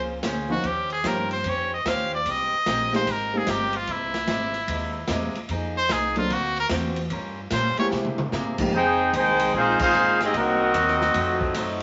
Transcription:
Already playing: C#2 F3 A#3 C4 C#4 G#4 C5
0.23 D2 A#3 C#4 G#4 C5, kick, snare, hi-hat pedal, ride
0.49 F3 A#3 C4 C#4 D#4 F#4
0.63 D#2 D#3 C#4 G4 C5, kick, ride
0.90 G#4, ride
1.04 G2 D#3 F3 A#3 C4 C#4 G4 A#4 C5, kick, snare, hi-hat pedal, ride
1.31 C5, ride
1.44 F2 D#3 C#4 G4 C5, kick, ride
1.50 C#5
1.74 D#5
1.85 D#2 D#3 C#4 G4 C5 F5, kick, snare, hi-hat pedal, ride
2.15 D5
2.26 C2 G#3 C4 G4 A#4, kick, ride
2.31 D#5
2.53 muted upright bass stroke
2.66 A#1 G#3 C4 G4 A#4, kick, snare, hi-hat pedal, ride
2.93 G#3 A#3 C4 D#4 G4 C5, snare
3.07 G#1 G#3 C4 G4 A#4, kick, ride
3.12 A#4
3.33 G#3 A#3 C4 D#4 G4
3.38 G#4
3.47 G1 G#3 C4 G4 A#4, kick, snare, hi-hat pedal, ride
3.73 F4, ride
3.87 C2 C3 G#3 A#3 E4, kick, ride
3.92 E4
4.14 snare, ride
4.27 G#1 C3 G#3 A#3 E4, kick, snare, hi-hat pedal, ride
4.54 ride
4.67 D#2 C3 G#3 A#3 E4, kick, ride
5.07 E2 C3 G#3 A#3 E4, kick, snare, hi-hat pedal, ride
5.35 muted upright bass stroke, ride
5.49 F2 F3 A#3 D#4 G#4, kick, ride
5.78 C5
5.89 C2 F3 A#3 D#4 G#4, kick, snare, hi-hat pedal, ride
6.16 F#3 A#3 C4 D4 F4 A4, ride
6.30 D2 D3 A#3 C4 F#4, kick, ride
6.56 A#4, ride
6.69 E2 D3 A#3 C4 F#4, kick, snare, hi-hat pedal, ride
6.96 ride
7.10 G2 G3 C#4 F4 A#4, kick, ride
7.50 A#2 G3 C#4 F4 A#4 C5, kick, snare, hi-hat pedal, ride
7.77 G#3 A#3 C4 E4 G4 C#5, muted upright bass stroke, ride
7.91 C3 A#3 E4 G#4, snare
8.05 mid tom
8.18 mid tom
8.32 G#2 C3 A#3 E4 G#4, snare, hi-hat pedal
8.58 F2 G#3 A#3 C4 D#4 G4, kick, crash
8.71 F2 D#3 F3 G#3 A#3 C4 D#4 G#4
8.75 D#4 G#4 C5 G5
9.13 C2 C3 D#3 F3 G#3 A#3 D#4 G#4 C5 G5 G#5, kick, hi-hat pedal, ride
9.39 ride
9.53 A#1 F3 G#3 A#3 C4 D#4 F4 G#4 C5 F5, kick
9.79 G#3 C4 D#4 F4 G#4 C5 F5, muted upright bass stroke, kick, crash
9.93 G#1 F3 A#3 D#4 G#4, hi-hat pedal
10.20 G#3 C4 D#4 G4 G#4 D#5, snare, ride
10.32 C2 C3 A#3 C4 D#4 F#4, kick, ride
10.36 F#3 A#3 C4 D#4 F#4 A#4 D#5
10.74 D#2 C3 F#3 A#3 D#4, kick, hi-hat pedal, ride
10.88 snare
11.01 snare
11.14 F2 F3 F#3 A3 D#4 F#4, kick, ride
11.41 kick
11.54 F#2 F3 A3 D#4 F#4, kick, hi-hat pedal, ride

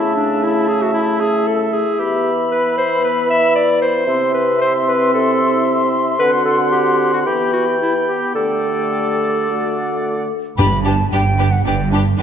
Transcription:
Already playing: C#3 A3 E4 E5 A5
0.16 D4
0.43 E4
0.68 G#4
0.82 F#4
0.93 E4
1.20 G#4
1.47 A4
1.73 G#4
1.99 E3 B3 G4 B5
2.51 B4
2.77 C5
3.04 B4
3.30 E5
3.56 D5
3.82 C5
4.07 C3 C4 E4 E5 C6
4.34 B4
4.61 C5
4.88 B4
5.14 A4
6.19 D3 C4 F#4 B4 F#5
6.45 A4
6.72 G4
7.13 F#4
7.25 E3 B3 G4 G5 B5
7.53 F#4
7.80 B3 E4 G4
8.08 G4
8.35 D3 A3 G4 A4 D5 G5
9.48 A3 F#4 F#5
10.57 G1 G2 D4 G4 B4 B5
10.84 D4 G4 B4 A5
11.11 G1 G2 D4 G4 B4 G5
11.38 D4 G4 B4
11.51 F#5
11.65 G1 G2 D4 G4 B4 G5
11.92 D4 G4 B4 A5
12.18 G1 G2 D4 B4 G5

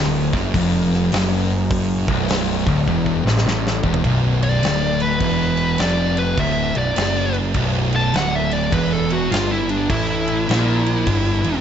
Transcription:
Already playing: D1 D2
0.33 F#1 F#2, kick, snare
0.54 F1 F2, kick, open hi-hat
0.93 snare
1.12 F#1 F#2, snare, open hi-hat
1.71 kick, open hi-hat
2.08 B0 B1, kick
2.29 snare, open hi-hat
2.67 D1 D2, kick
2.87 E1 E2, kick
3.06 kick
3.24 A1 A2, snare
3.37 snare
3.45 A1 A2, snare
3.67 snare
3.83 E1 E2, kick
3.94 floor tom
4.04 B0 B1, kick, crash
4.43 D5, crash
4.63 D1 D2, snare, crash
5.00 B4, crash
5.20 E1 E2, kick, crash
5.57 crash
5.78 F1 F2 D5, snare, crash
6.17 B4, crash
6.38 D1 D2 E5, kick, crash
6.75 B0 B1 D5, crash
6.96 F#1 F#2, snare, crash
7.34 crash
7.54 B0 B1, kick, crash
7.92 A5, crash
8.14 D1 D2 F#5, snare, crash
8.35 E5
8.51 D5, crash
8.71 E1 E2 B4, kick, crash
8.93 A4
9.10 F#4, crash
9.31 G1 G2 F4, snare, crash
9.51 E4
9.69 D4, crash
9.89 A1 A2 E4, kick, crash
10.28 crash
10.48 A#1 A#2, snare, crash
10.86 crash
11.07 G1 G2, kick, crash
11.44 E1 E2, crash

